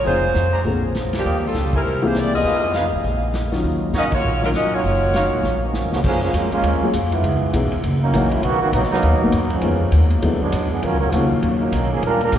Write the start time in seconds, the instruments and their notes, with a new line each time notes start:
0.05 upright bass F1, upright piano F3 C4 D#4 G#4, saxophone section G#3 D#4 F4 C5, trumpet section F4 C5 D#5 G#5, open hi-hat
0.34 upright bass F2, snare, closed hi-hat
0.53 trumpet section G#4 C5 D5 A#5
0.65 upright bass A#1, upright piano D3 A#3 C4 G#4, open hi-hat
0.95 snare, closed hi-hat
1.13 snare, ride
1.17 saxophone section F3 A#3 D4 G4
1.25 upright bass D#2, trumpet section F4 D5 D#5 G5
1.46 saxophone section G3 D4 F4 A4
1.54 upright bass C#2, snare, closed hi-hat
1.73 saxophone section G3 C4 E4 A#4, trumpet section E4 A#4 C5 G#5, kick
1.84 upright bass C2, open hi-hat
2.02 upright piano E3 A#3 C4 G#4, saxophone section A#3 E4 G4 C5
2.15 saxophone section A#3 E4 G4 D5, snare, closed hi-hat
2.33 saxophone section B3 F4 G#4 D#5, open hi-hat
2.44 upright bass F2, trumpet section D#4 G#4 B4 F5, open hi-hat
2.74 trumpet section D#4 G#4 B4 F5, snare, closed hi-hat
2.93 upright bass A1
3.04 upright bass A#1, open hi-hat
3.34 snare, closed hi-hat
3.52 upright piano D#3 F#3 C#4 F4, snare, open hi-hat
3.63 upright bass D#2, open hi-hat
3.93 upright bass A#2, trumpet section D#4 F#4 C#5 F5, snare, closed hi-hat
3.97 saxophone section C#4 F#4 A#4 D#5
4.12 saxophone section A#3 F4 F#4 C#5, kick, ride
4.23 upright bass A#1
4.42 upright piano D#3 F#3 C#4 F4, saxophone section F#3 C#4 F4 A#4, snare
4.54 upright bass A#2, saxophone section C#4 F#4 A#4 D#5, snare, closed hi-hat
4.73 saxophone section A#3 F4 F#4 C#5, trumpet section D#4 F#4 C#5 G#5
4.83 upright bass F#1, open hi-hat
5.14 upright piano D#3 F#3 C#4 F5, trumpet section D#4 F#4 C#5 F5, snare, closed hi-hat
5.32 upright bass A#2
5.43 upright bass A#1, snare
5.62 trombone section F3 F#3 A#3 C#4
5.74 snare
5.84 upright bass D#2
5.92 upright bass C#2, trombone section C#3 F3 A#3 F#4, snare
6.04 upright bass F#2, trombone section F3 A#3 C#4 G#4, kick, crash
6.22 trombone section F3 A#3 C#4 G#4
6.33 upright bass F2, trombone section G#3 A#3 C#4 F4, hi-hat pedal, ride
6.52 trombone section G#3 A#3 C#4 F4, ride
6.63 upright bass D#2, ride
6.82 upright piano F#3 A#3 C#4 F4 G#4
6.93 upright bass F2, hi-hat pedal, ride
7.12 trombone section G#3 B3 D#4 E4, ride
7.23 upright bass C#2, ride
7.42 muted upright bass stroke
7.53 upright bass B1, upright piano E3 B3 C#4 D#4 G#4, hi-hat pedal, ride
7.72 muted upright bass stroke, ride
7.84 upright bass F#1, ride
8.02 trombone section F#3 A#3 C#4 D#4
8.13 upright bass A#1, upright piano E3 F#3 A#3 C#4 F#4, hi-hat pedal, ride
8.31 trombone section F#3 A#3 C#4 E4, ride
8.42 upright bass B1, trombone section D#3 A#3 B3 F#4, ride
8.60 trombone section D#3 A#3 B3 F#4, muted upright bass stroke
8.72 upright bass A#1, trombone section F#3 A#3 B3 D#4, hi-hat pedal, ride
8.83 snare
8.90 trombone section F#3 A#3 B3 D#4, muted upright bass stroke, snare
9.03 upright bass D#2, ride
9.13 upright bass B1
9.22 upright bass A#1, upright piano D#3 F#3 A#3 B3 F#4
9.32 upright bass F#2, hi-hat pedal, ride
9.50 trombone section F3 G#3 B3 C#4, ride
9.62 upright bass F2, upright piano D#3 F3 G#3 B3 F4, ride
9.92 upright bass D#2, hi-hat pedal, ride
10.10 ride
10.22 upright bass E2, upright piano D3 F#3 G#3 B3 E4, ride
10.41 trombone section F#3 G#3 B3 D4, muted upright bass stroke
10.52 upright bass F#2, hi-hat pedal, ride
10.71 trombone section F#3 B3 D4 G#4
10.82 upright bass D#2, trombone section F#3 C#4 F4 A#4, ride
10.93 upright bass C#2
11.00 upright bass A#1, trombone section F#3 C#4 F4 A#4
11.12 upright bass C#2, trombone section C#3 F3 A#3 F#4, upright piano D#3 F#3 A#3 C#4 F4, hi-hat pedal, ride
11.31 muted upright bass stroke
11.42 upright bass D#2, ride
11.61 trombone section F#3 A#3 C#4 D#4
11.72 upright bass B1, hi-hat pedal, ride
11.92 trombone section F3 A#3 C#4 G#4
12.02 upright bass A#1, trombone section G3 D4 F4 A#4, ride
12.21 trombone section G3 D4 F4 A#4, ride
12.32 upright bass A#1, trombone section F3 A#3 D4 G4, hi-hat pedal, ride